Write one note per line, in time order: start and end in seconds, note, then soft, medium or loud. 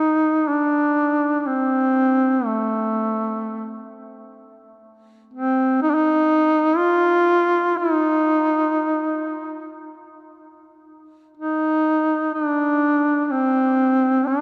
0.00 0.50 D#4 loud
0.48 1.40 D4 medium
1.40 1.48 D4 medium
1.47 2.46 C4 medium
2.45 3.89 A3 medium
5.34 5.79 C4 medium
5.82 5.92 D#4 loud
5.90 5.96 D4 medium
5.95 6.78 D#4 loud
6.77 7.79 F4 loud
7.77 9.78 D#4 loud
11.37 12.31 D#4 medium
12.34 13.25 D4 medium
13.25 13.33 D4 medium
13.31 14.29 C4 medium
14.27 14.41 D#4 medium